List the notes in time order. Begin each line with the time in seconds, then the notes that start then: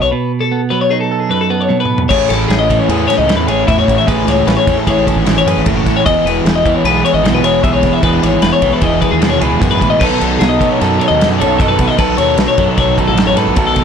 Already playing: B2 A4
0.02 B1 C#5
0.11 B2 B4
0.41 A4
0.52 B3
0.70 F#3 B4
0.81 C#5
0.91 D#4 G#4
1.00 A4
1.11 A4
1.20 G#4
1.29 F#2 B4
1.41 A4
1.50 B3 B4
1.61 C#5
1.69 B2, high tom
1.80 B4
1.85 mid tom
1.98 floor tom
2.09 A1 A2 E3 A3 C#4 E4 G#4 C#5, kick, crash
2.29 A1 A3 C#4 E4 A4, snare, ride
2.48 A1 C#4 G#4, snare, ride
2.59 D#5
2.68 A2 E3 A3 C#4 E4, kick, snare, ride
2.79 C#5
2.88 E2 A2 E3 A3 C#4 E4 G#4 B4, ride
3.08 C#4 E4 C#5, snare, ride
3.12 A3
3.18 C#2 D#5
3.28 E3 A3 C#4 E4, snare, ride
3.37 E2 B4
3.47 A1 A3 C#4 E4 G#4 C#5, ride
3.67 E2 A2 E3 A3 C#4 E4 E5, kick, snare, ride
3.78 F#4 C#5
3.88 A1 A3 C#4 E4, kick, ride
3.98 E5
4.07 A1 A2 E3 A3 C#4 E4 G#4 B4, kick, ride
4.27 C#2 A3 C#4 E4 C#5, snare, ride
4.47 A1 C#4 B4, snare, ride
4.57 C#5
4.67 E2 E3 A3 C#4 E4, kick, snare, ride
4.77 A4
4.87 A1 A2 E3 A3 C#4 E4 G#4 C#5, kick, snare, ride
5.06 A3 C#4 E4 A4, kick, ride
5.16 G#1 G#4
5.26 E3 A3 C#4 E4, snare, ride
5.38 C#5
5.46 F#2 A3 C#4 E4 G#4 B4, ride
5.57 G#1
5.66 F#1 A2 E3 A3 C#4 E4 G#4, kick, ride
5.76 F#4 A4
5.86 A3 C#4 E4, kick, snare, ride
5.96 C#5
6.05 E1 E2 E3 G#3 B3 E4 G#4 D#5, kick, ride
6.25 E1 B3 E4 B4, ride
6.29 G#3
6.45 E1 G#4, snare, ride
6.55 D#5
6.65 E2 E3 G#3 B3 E4, kick, ride
6.75 C#5
6.84 B1 E3 G#3 B3 E4 G#4 B4, ride
7.04 G#3 B3 E4 C#5, ride
7.14 G#1 D#5
7.24 B2 E3 G#3 B3 E4, snare, ride
7.33 B1 B4
7.44 E1 G#3 B3 E4 G#4 C#5, ride
7.63 B1 E2 E3 G#3 B3 E4 G#4 E5, kick, ride
7.73 C#5
7.82 E1 G#3 B3 E4, kick, snare, ride
7.93 E5
8.02 E1 E2 E3 G#3 B3 E4 G#4 B4, kick, ride
8.22 G#1 G#3 B3 E4 C#5, snare, ride
8.42 E1 B4, snare, ride
8.53 C#5
8.62 B1 E3 G#3 B3 E4, kick, ride
8.73 B4
8.81 E1 E3 G#3 B3 E4 G#4 D#5, kick, ride
9.01 G#3 B3 E4 B4, kick, ride
9.11 D#2 G#4
9.20 B2 E3 G#3 B3 E4, snare, ride
9.30 C#5
9.40 C#2 G#3 B3 E4 G#4 B4, ride
9.53 D#2
9.60 F#2 G#2 E3 G#3 B3 E4 G#4, kick, ride
9.71 B4
9.80 A2 G#3 B3 E4, kick, ride
9.90 D#5
9.99 B1 B2 D#3 F#3 B3 D#4 A4 B4, kick, crash
10.19 B1 F#3 B3 D#4 A4, ride
10.39 B1 D#4 G#4, snare, ride
10.49 D#5
10.59 B2 F#3 B3 D#4 A4, kick, snare, ride
10.69 C#5
10.79 F#2 B2 D#3 F#3 B3 D#4 A4 B4, snare, ride
10.99 F#3 B3 D#4 A4 C#5, ride
11.08 D#2 D#5
11.18 F#2 F#3 B3 D#4 A4, ride
11.22 snare
11.29 F#2 B4
11.38 B1 F#3 B3 D#4 A4 C#5, ride
11.58 F#2 B2 D#3 F#3 B3 D#4 A4 D#5, kick, snare, ride
11.68 B4
11.78 B1 F#3 B3 D#4 A4, kick, ride
11.88 D#5
11.97 B1 B2 D#3 F#3 B3 D#4 A4 B4, kick, ride
12.17 D#2 F#3 B3 D#4 A4 C#5, snare, ride
12.38 B1 D#4 B4, snare, ride
12.48 C#5
12.57 F#2 F#3 B3 D#4 A4, kick, ride
12.68 A4
12.77 B1 B2 D#3 F#3 B3 D#4 A4 C#5, kick, snare, ride
12.97 F#3 B3 D#4 A4 B4, kick, ride
13.08 A1 A4
13.15 F#2 F#3 B3 D#4 A4, snare, ride
13.27 C#5
13.36 G#2 F#3 B3 D#4 A4 B4, snare, ride
13.47 A1
13.55 B1 B2 D#3 F#3 B3 D#4 G#4 A4, kick, ride
13.67 A4
13.75 F#3 B3 D#4 A4, kick, snare, ride